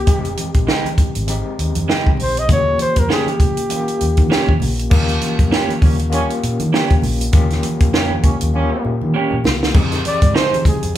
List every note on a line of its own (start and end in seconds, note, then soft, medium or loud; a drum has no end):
0.00 0.68 G4 loud
0.07 0.33 F1 loud
0.07 0.87 G#3 medium
0.07 0.87 C4 medium
0.07 0.88 D#4 medium
0.07 0.88 G4 medium
0.07 kick loud
0.07 closed hi-hat medium
0.07 muted conga soft
0.07 low conga medium
0.25 closed hi-hat soft
0.37 closed hi-hat medium
0.37 high conga medium
0.54 0.66 A#1 medium
0.54 kick medium
0.54 closed hi-hat soft
0.67 0.88 G#3 medium
0.67 0.88 D#4 medium
0.67 0.88 G4 medium
0.67 snare loud
0.67 muted conga soft
0.85 closed hi-hat soft
0.85 high conga medium
0.98 muted fingered electric bass stroke soft
0.98 kick medium
0.98 closed hi-hat medium
0.98 muted conga soft
0.98 low conga medium
1.15 1.41 G#1 medium
1.15 closed hi-hat medium
1.27 2.08 G#3 medium
1.27 2.08 C4 medium
1.27 2.09 D#4 medium
1.27 2.09 G4 medium
1.27 closed hi-hat medium
1.27 high conga soft
1.59 1.73 D#2 loud
1.59 closed hi-hat medium
1.75 1.87 F2 medium
1.75 closed hi-hat medium
1.75 high conga medium
1.88 2.09 G#3 medium
1.88 2.09 D#4 medium
1.88 2.09 G4 medium
1.88 snare loud
1.88 muted conga soft
2.04 2.19 C#2 medium
2.04 kick medium
2.04 high conga medium
2.17 2.49 A#1 loud
2.17 open hi-hat medium
2.17 low conga medium
2.22 2.40 C5 loud
2.37 2.50 D#5 loud
2.37 closed hi-hat medium
2.48 2.75 D#2 loud
2.48 3.29 A#3 medium
2.48 3.29 C#4 medium
2.48 3.30 F4 medium
2.48 2.57 F#4 medium
2.48 kick loud
2.48 closed hi-hat medium
2.48 low conga medium
2.52 2.79 C#5 loud
2.57 3.33 G4 medium
2.78 3.00 C5 loud
2.78 closed hi-hat medium
2.78 muted conga soft
2.78 high conga medium
2.96 3.07 F2 medium
2.96 3.11 A#4 medium
2.96 kick medium
2.96 closed hi-hat medium
3.09 3.30 A#3 medium
3.09 3.30 C#4 medium
3.09 3.30 G4 loud
3.09 3.32 G#4 medium
3.09 snare loud
3.09 muted conga soft
3.27 4.80 G4 medium
3.27 closed hi-hat soft
3.27 high conga medium
3.40 kick medium
3.40 closed hi-hat medium
3.40 low conga medium
3.57 closed hi-hat medium
3.69 4.50 A#3 medium
3.69 4.50 C#4 medium
3.69 4.51 F4 medium
3.69 4.51 G4 medium
3.69 closed hi-hat medium
3.69 muted conga soft
3.69 high conga medium
3.88 closed hi-hat soft
4.01 4.16 D#2 medium
4.01 closed hi-hat medium
4.01 muted conga soft
4.17 4.29 D#3 loud
4.17 kick medium
4.17 closed hi-hat soft
4.17 high conga medium
4.30 4.51 A#3 medium
4.30 4.51 C#4 medium
4.30 4.51 G4 medium
4.30 snare loud
4.47 4.59 D#2 medium
4.47 kick medium
4.47 high conga medium
4.60 4.86 A#1 medium
4.60 open hi-hat soft
4.60 muted conga soft
4.60 low conga medium
4.79 closed hi-hat medium
4.90 5.17 D#2 loud
4.90 5.71 A#3 medium
4.90 5.71 C#4 medium
4.90 5.72 F4 medium
4.90 5.72 G4 medium
4.90 kick loud
4.90 crash loud
4.90 muted conga soft
4.90 low conga medium
5.09 closed hi-hat soft
5.21 closed hi-hat medium
5.21 high conga medium
5.39 5.50 F2 medium
5.39 kick medium
5.39 closed hi-hat medium
5.51 5.72 A#3 medium
5.51 5.72 C#4 medium
5.51 5.73 G4 medium
5.51 snare loud
5.51 muted conga soft
5.69 closed hi-hat soft
5.69 high conga medium
5.82 6.22 D#2 medium
5.82 5.97 G3 medium
5.82 5.97 A#3 medium
5.82 5.97 C#4 medium
5.82 kick medium
5.82 open hi-hat soft
5.82 low conga medium
5.99 closed hi-hat soft
6.10 6.32 G3 medium
6.10 6.91 A#3 medium
6.10 6.32 A#3 medium
6.10 6.92 C#4 medium
6.10 6.32 C#4 medium
6.10 6.92 F4 medium
6.10 6.93 G4 medium
6.10 closed hi-hat medium
6.10 muted conga soft
6.10 high conga medium
6.30 closed hi-hat soft
6.42 6.58 A#2 medium
6.42 closed hi-hat medium
6.42 muted conga soft
6.60 6.71 D#3 medium
6.60 closed hi-hat soft
6.60 high conga medium
6.73 6.93 A#3 medium
6.73 6.93 C#4 loud
6.73 6.94 G4 loud
6.73 snare loud
6.73 muted conga soft
6.89 7.01 D#2 medium
6.89 kick medium
6.89 closed hi-hat soft
6.89 high conga medium
7.02 7.29 A#1 medium
7.02 open hi-hat soft
7.02 muted conga soft
7.02 low conga medium
7.21 closed hi-hat medium
7.32 7.59 D#2 loud
7.32 8.13 A#3 medium
7.32 8.13 C#4 medium
7.32 8.14 F4 medium
7.32 8.14 G4 loud
7.32 kick loud
7.32 closed hi-hat medium
7.32 muted conga soft
7.32 low conga medium
7.50 snare soft
7.50 closed hi-hat soft
7.63 closed hi-hat medium
7.63 muted conga soft
7.63 high conga medium
7.80 8.17 F2 medium
7.80 kick medium
7.80 closed hi-hat soft
7.94 8.14 A#3 medium
7.94 8.14 C#4 medium
7.94 8.15 G4 medium
7.94 snare loud
7.94 muted conga soft
8.11 high conga medium
8.23 8.39 G3 medium
8.23 8.39 A#3 medium
8.23 8.39 C#4 medium
8.23 muted fingered electric bass stroke soft
8.23 kick medium
8.23 closed hi-hat medium
8.23 low conga medium
8.41 8.67 D#2 medium
8.41 closed hi-hat medium
8.54 8.95 G3 medium
8.54 9.34 A#3 medium
8.54 8.95 A#3 medium
8.54 9.34 C#4 medium
8.54 8.95 C#4 medium
8.54 9.35 F4 medium
8.54 9.35 G4 medium
8.54 muted conga soft
8.54 high conga medium
8.85 8.99 A#2 loud
8.85 muted conga soft
9.02 9.13 D#3 medium
9.02 high conga medium
9.14 9.34 A#3 medium
9.14 9.35 C#4 medium
9.14 9.35 G4 medium
9.14 muted conga soft
9.31 9.43 A#2 medium
9.31 high conga medium
9.44 9.71 C2 medium
9.44 snare loud
9.44 muted conga soft
9.44 low conga medium
9.63 snare loud
9.73 10.00 F2 loud
9.73 10.54 C4 medium
9.73 10.55 D#4 medium
9.73 10.55 G4 medium
9.73 10.55 G#4 loud
9.73 kick loud
9.73 crash loud
9.73 low conga medium
9.92 snare soft
9.92 closed hi-hat soft
10.05 10.38 D5 loud
10.05 closed hi-hat medium
10.05 high conga medium
10.22 10.33 G#2 loud
10.22 kick medium
10.22 closed hi-hat medium
10.34 10.55 D#4 medium
10.34 10.55 G#4 medium
10.34 10.56 C5 medium
10.34 10.66 C5 medium
10.34 snare loud
10.53 closed hi-hat soft
10.53 high conga medium
10.65 10.94 G#4 medium
10.65 muted fingered electric bass stroke soft
10.65 kick medium
10.65 closed hi-hat medium
10.65 muted conga soft
10.65 low conga medium
10.83 10.98 F2 medium
10.83 closed hi-hat soft
10.94 10.98 C4 medium